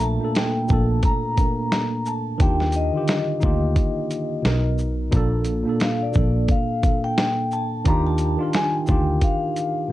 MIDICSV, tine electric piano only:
0, 0, Header, 1, 2, 480
1, 0, Start_track
1, 0, Tempo, 681818
1, 1690, Time_signature, 4, 2, 24, 8
1, 6986, End_track
2, 0, Start_track
2, 0, Title_t, "Tine electric piano"
2, 0, Program_c, 0, 4
2, 0, Control_c, 0, 64, 127
2, 0, Note_on_c, 0, 46, 110
2, 0, Note_on_c, 0, 57, 121
2, 0, Note_on_c, 0, 58, 99
2, 0, Note_on_c, 0, 62, 93
2, 81, Note_off_c, 0, 46, 0
2, 86, Note_off_c, 0, 58, 0
2, 92, Note_off_c, 0, 62, 0
2, 99, Note_off_c, 0, 57, 0
2, 135, Note_on_c, 0, 46, 70
2, 147, Note_on_c, 0, 58, 66
2, 160, Note_on_c, 0, 62, 65
2, 171, Note_on_c, 0, 69, 85
2, 440, Note_off_c, 0, 46, 0
2, 446, Note_off_c, 0, 58, 0
2, 453, Note_off_c, 0, 62, 0
2, 458, Note_off_c, 0, 69, 0
2, 477, Note_on_c, 0, 46, 88
2, 490, Note_on_c, 0, 58, 73
2, 501, Note_on_c, 0, 62, 67
2, 515, Note_on_c, 0, 69, 93
2, 904, Note_off_c, 0, 46, 0
2, 910, Note_off_c, 0, 58, 0
2, 916, Note_off_c, 0, 62, 0
2, 923, Note_off_c, 0, 69, 0
2, 953, Note_on_c, 0, 46, 67
2, 967, Note_on_c, 0, 58, 64
2, 980, Note_on_c, 0, 62, 60
2, 992, Note_on_c, 0, 70, 65
2, 1591, Note_off_c, 0, 46, 0
2, 1599, Note_off_c, 0, 58, 0
2, 1605, Note_off_c, 0, 62, 0
2, 1611, Note_off_c, 0, 70, 0
2, 1675, Note_on_c, 0, 51, 109
2, 1688, Note_on_c, 0, 62, 101
2, 1700, Control_c, 0, 64, 0
2, 1702, Note_on_c, 0, 65, 84
2, 1714, Note_on_c, 0, 67, 97
2, 1830, Control_c, 0, 64, 127
2, 2000, Note_off_c, 0, 51, 0
2, 2006, Note_off_c, 0, 62, 0
2, 2013, Note_off_c, 0, 65, 0
2, 2019, Note_off_c, 0, 67, 0
2, 2055, Note_on_c, 0, 51, 66
2, 2067, Note_on_c, 0, 50, 63
2, 2080, Note_on_c, 0, 65, 71
2, 2093, Note_on_c, 0, 67, 90
2, 2360, Note_off_c, 0, 51, 0
2, 2366, Note_off_c, 0, 50, 0
2, 2373, Note_off_c, 0, 65, 0
2, 2379, Note_off_c, 0, 67, 0
2, 2396, Note_on_c, 0, 63, 92
2, 2410, Note_on_c, 0, 58, 87
2, 2421, Note_on_c, 0, 65, 93
2, 2434, Note_on_c, 0, 67, 102
2, 3115, Note_on_c, 0, 47, 96
2, 3123, Note_off_c, 0, 63, 0
2, 3129, Note_on_c, 0, 59, 87
2, 3130, Note_off_c, 0, 58, 0
2, 3136, Note_off_c, 0, 65, 0
2, 3140, Control_c, 0, 64, 0
2, 3140, Note_on_c, 0, 63, 85
2, 3142, Note_off_c, 0, 67, 0
2, 3154, Note_on_c, 0, 70, 110
2, 3257, Control_c, 0, 64, 127
2, 3543, Note_off_c, 0, 47, 0
2, 3550, Note_off_c, 0, 59, 0
2, 3555, Note_off_c, 0, 63, 0
2, 3562, Note_off_c, 0, 70, 0
2, 3599, Note_on_c, 0, 46, 127
2, 3610, Note_on_c, 0, 58, 98
2, 3620, Control_c, 0, 64, 0
2, 3622, Note_on_c, 0, 62, 112
2, 3636, Note_on_c, 0, 69, 118
2, 3735, Control_c, 0, 64, 127
2, 3922, Note_off_c, 0, 46, 0
2, 3927, Note_off_c, 0, 58, 0
2, 3933, Note_off_c, 0, 62, 0
2, 3941, Note_off_c, 0, 69, 0
2, 3968, Note_on_c, 0, 46, 80
2, 3981, Note_on_c, 0, 58, 68
2, 3994, Note_on_c, 0, 62, 74
2, 4007, Note_on_c, 0, 69, 76
2, 4277, Note_off_c, 0, 46, 0
2, 4283, Note_off_c, 0, 58, 0
2, 4290, Note_off_c, 0, 62, 0
2, 4296, Note_off_c, 0, 69, 0
2, 4310, Note_on_c, 0, 46, 75
2, 4322, Note_on_c, 0, 58, 75
2, 4336, Note_on_c, 0, 62, 72
2, 4348, Note_on_c, 0, 69, 76
2, 4740, Note_off_c, 0, 46, 0
2, 4747, Note_off_c, 0, 58, 0
2, 4753, Note_off_c, 0, 62, 0
2, 4759, Note_off_c, 0, 69, 0
2, 4802, Note_on_c, 0, 46, 65
2, 4814, Note_on_c, 0, 58, 60
2, 4827, Note_on_c, 0, 62, 59
2, 4839, Note_on_c, 0, 69, 64
2, 5436, Note_off_c, 0, 46, 0
2, 5442, Note_off_c, 0, 58, 0
2, 5449, Note_off_c, 0, 62, 0
2, 5455, Note_off_c, 0, 69, 0
2, 5522, Note_on_c, 0, 51, 118
2, 5533, Note_on_c, 0, 62, 114
2, 5540, Control_c, 0, 64, 0
2, 5545, Note_on_c, 0, 65, 116
2, 5558, Note_on_c, 0, 67, 127
2, 5649, Control_c, 0, 64, 127
2, 5843, Note_off_c, 0, 51, 0
2, 5849, Note_off_c, 0, 62, 0
2, 5855, Note_off_c, 0, 65, 0
2, 5862, Note_off_c, 0, 67, 0
2, 5890, Note_on_c, 0, 51, 94
2, 5904, Note_on_c, 0, 62, 89
2, 5916, Note_on_c, 0, 65, 80
2, 5930, Note_on_c, 0, 70, 95
2, 6198, Note_off_c, 0, 51, 0
2, 6205, Note_off_c, 0, 62, 0
2, 6211, Note_off_c, 0, 65, 0
2, 6218, Note_off_c, 0, 70, 0
2, 6237, Note_on_c, 0, 63, 82
2, 6250, Note_on_c, 0, 62, 84
2, 6263, Note_on_c, 0, 65, 90
2, 6275, Note_on_c, 0, 67, 102
2, 6956, Note_on_c, 0, 46, 85
2, 6964, Note_off_c, 0, 63, 0
2, 6970, Note_off_c, 0, 62, 0
2, 6977, Note_off_c, 0, 65, 0
2, 6978, Control_c, 0, 64, 0
2, 6983, Note_off_c, 0, 67, 0
2, 6986, Note_off_c, 0, 46, 0
2, 6986, End_track
0, 0, End_of_file